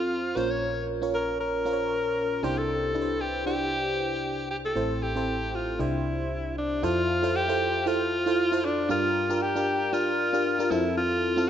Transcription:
Already playing: F2 C4 F4 A4 C5
0.36 A#1 A#2 C#4 F4 A#4 C5 C#5
0.51 C#5
1.02 C#4 F4 A#4 C#5
1.14 A#4
1.40 A#4
1.65 C#4 F4 A#4 C5
1.73 C#5
2.43 C2 C3 D4 E4 G4 C5
2.58 A4
2.94 D4 E4 G4 B4
3.02 C5
3.21 G4
3.46 D4 E4 G4 C5
4.51 G4
4.65 A4
4.75 A1 A2 C4 E4 A4 C5
5.02 G4
5.16 C4 E4 A4 C5
5.55 F4
5.79 C2 C3 D4 E4 G4 C5
6.58 D4
6.83 F2 E4 F4 A4 C5
7.23 E4 F4 A4 C5
7.36 G4
7.48 E4 F4 A4 C5
7.86 E4 F4 A4 C5
8.26 E4 F4 A4 C5
8.52 E4 F4 A4 C5
8.65 D4
8.89 G2 D4 F4 G4 A#4
9.29 D4 F4 G4 A#4
9.42 G4
9.55 D4 F4 G4 A#4
9.93 D4 F4 G4 A#4
10.33 D4 F4 G4 A#4
10.59 D4 F4 G4 A#4
10.70 F2 C4 E4 F4 A4
10.97 F4
11.37 C4 E4 F4 A4

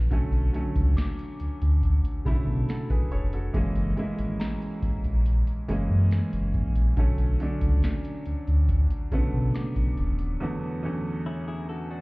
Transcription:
0.11 B1 D3 F#3 A3 C#4, kick, closed hi-hat
0.33 closed hi-hat
0.53 D3 F#3 A3 C#4, closed hi-hat
0.76 C#2, kick, closed hi-hat
0.97 D6, snare, closed hi-hat
1.19 closed hi-hat
1.40 D2, closed hi-hat
1.62 D2, closed hi-hat
1.83 kick, closed hi-hat
2.05 closed hi-hat
2.25 B1 C#3 F#3 A3 E4 B5, kick, closed hi-hat
2.32 D3
2.47 B2
2.69 F#4 A4, snare, closed hi-hat
2.90 B1 G#4 B4, kick, closed hi-hat
3.11 F1 A4 C#5, closed hi-hat
3.33 F#4 A4, closed hi-hat
3.54 F#1 E3 G#3 A#3 C#4, kick, closed hi-hat
3.76 closed hi-hat
3.97 E3 G#3 A#3 E4, closed hi-hat
4.18 G#1, closed hi-hat
4.40 A#5, snare, closed hi-hat
4.62 closed hi-hat
4.82 A#1, kick, closed hi-hat
5.04 A#1, closed hi-hat
5.26 closed hi-hat
5.47 closed hi-hat
5.68 F#1 E3 G#3 A#3 C#4, closed hi-hat
5.90 F#2
6.11 snare, closed hi-hat
6.33 F#1, closed hi-hat
6.54 A#1, kick, closed hi-hat
6.76 closed hi-hat
6.97 B1 D3 F#3 A3 C#4, kick, closed hi-hat
7.18 closed hi-hat
7.40 D3 F#3 A3 D4, closed hi-hat
7.61 C#2, kick, closed hi-hat
7.83 snare, closed hi-hat
8.05 closed hi-hat
8.26 D2, closed hi-hat
8.47 D2, closed hi-hat
8.69 kick, closed hi-hat
8.90 closed hi-hat
9.12 B1 C#3 F#3 A3 B3, kick, closed hi-hat
9.18 D3
9.33 B2
9.54 D6, snare, closed hi-hat
9.76 B1, kick, closed hi-hat
9.97 D#1, closed hi-hat
10.19 closed hi-hat
10.40 E2 D3 F#3 A3 B3
10.83 E2 D3 F#3 A3 C#4
11.26 C#4 E4
11.48 E4 G#4
11.69 F#4 A4
11.90 D4 F#4

